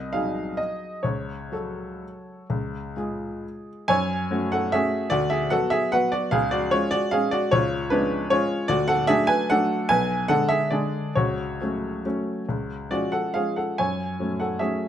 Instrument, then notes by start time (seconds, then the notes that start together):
upright piano
Already playing: C2 D#5
0.13 F#3 D#4 G#4 F5
0.57 D#5
1.03 C#2 C#5
1.52 F#3 F#4 A4
2.50 C#2
2.97 G#3 F4 G#4
3.88 F#2 C#5 G#5
4.31 A3 C#4 F#4
4.52 A4 F#5
4.72 A3 C#4 F#4 G#4 E5
5.10 D2 F#4 D5
5.30 G#4 E5
5.50 F#3 B3 F#4 A4 F#5
5.70 G#4 E5
5.92 F#3 B3 F#4 B4 F#5
6.12 F#4 D5
6.31 C#2 G#4 F5
6.51 F#4 D5
6.71 G#3 C#4 F4 C#5
6.91 F#4 D5
7.11 G#3 C#4 G#4 F5
7.31 F#4 D5
7.51 C#2 F4 C#5
7.90 G#3 C#4 D4 B4
8.30 G#3 C#4 F4 C#5
8.68 D2 F#4 D5
8.88 A4 F#5
9.07 F#3 A3 D4 G#4 E5
9.27 B4 G#5
9.50 F#3 A3 D4 A4 F#5
9.89 B1 B4 G#5
10.28 D3 G#3 D4 A4 F#5
10.49 G#4 E5
10.71 D3 G#3 D4 G#4 D5
11.15 C#2 F#4 C#5
11.61 F#3 A3 C#4
12.05 F#3 A3 C#4
12.49 C#2
12.91 F3 G#3 C#4 F#4 D5
13.12 A4 F#5
13.34 F3 G#3 C#4 G#4 F5
13.56 A4 F#5
13.78 F#2 C#5 G#5
14.19 F#3 A3 C#4
14.40 A4 F#5
14.59 F#3 A3 C#4 G#4 E5